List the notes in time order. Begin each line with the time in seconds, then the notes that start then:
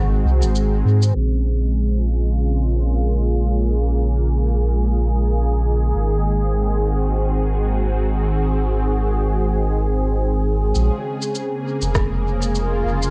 Already playing: G#1 D#3 G#3 C4 F#4 G#4
0.25 C2
0.42 G#1, shaker
0.55 shaker
0.85 G#2
1.02 shaker
1.15 A#1 C#3
1.94 F4
2.55 A#3
5.95 G#1 D#3
6.37 C4
6.73 F#4
10.75 A#1 C#3, shaker
11.22 shaker
11.35 shaker
11.46 A#3
11.82 F1, shaker
11.95 kick, cross-stick, shaker
12.42 shaker
12.55 F4, shaker
12.85 F1
13.03 shaker